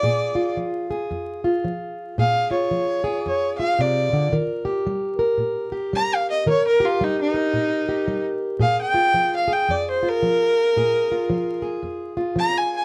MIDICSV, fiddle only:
0, 0, Header, 1, 2, 480
1, 0, Start_track
1, 0, Tempo, 536193
1, 32, Time_signature, 4, 2, 24, 8
1, 11501, End_track
2, 0, Start_track
2, 0, Title_t, "Fiddle"
2, 0, Program_c, 0, 110
2, 0, Note_on_c, 0, 74, 119
2, 495, Note_off_c, 0, 74, 0
2, 1971, Note_on_c, 0, 77, 96
2, 2249, Note_off_c, 0, 77, 0
2, 2257, Note_on_c, 0, 73, 86
2, 2901, Note_off_c, 0, 73, 0
2, 2934, Note_on_c, 0, 73, 93
2, 3204, Note_off_c, 0, 73, 0
2, 3209, Note_on_c, 0, 77, 102
2, 3410, Note_on_c, 0, 74, 97
2, 3424, Note_off_c, 0, 77, 0
2, 3870, Note_off_c, 0, 74, 0
2, 5332, Note_on_c, 0, 82, 107
2, 5506, Note_on_c, 0, 77, 105
2, 5520, Note_off_c, 0, 82, 0
2, 5641, Note_off_c, 0, 77, 0
2, 5646, Note_on_c, 0, 75, 96
2, 5798, Note_off_c, 0, 75, 0
2, 5818, Note_on_c, 0, 73, 107
2, 5964, Note_off_c, 0, 73, 0
2, 5973, Note_on_c, 0, 70, 105
2, 6136, Note_on_c, 0, 65, 95
2, 6149, Note_off_c, 0, 70, 0
2, 6301, Note_on_c, 0, 63, 97
2, 6314, Note_off_c, 0, 65, 0
2, 6446, Note_off_c, 0, 63, 0
2, 6454, Note_on_c, 0, 63, 101
2, 7378, Note_off_c, 0, 63, 0
2, 7715, Note_on_c, 0, 77, 101
2, 7872, Note_off_c, 0, 77, 0
2, 7891, Note_on_c, 0, 79, 114
2, 8351, Note_off_c, 0, 79, 0
2, 8382, Note_on_c, 0, 77, 103
2, 8531, Note_on_c, 0, 79, 101
2, 8545, Note_off_c, 0, 77, 0
2, 8691, Note_on_c, 0, 74, 99
2, 8704, Note_off_c, 0, 79, 0
2, 8840, Note_off_c, 0, 74, 0
2, 8866, Note_on_c, 0, 72, 95
2, 9026, Note_on_c, 0, 70, 121
2, 9040, Note_off_c, 0, 72, 0
2, 10415, Note_off_c, 0, 70, 0
2, 11093, Note_on_c, 0, 82, 110
2, 11261, Note_on_c, 0, 80, 99
2, 11274, Note_off_c, 0, 82, 0
2, 11403, Note_off_c, 0, 80, 0
2, 11426, Note_on_c, 0, 80, 90
2, 11501, Note_off_c, 0, 80, 0
2, 11501, End_track
0, 0, End_of_file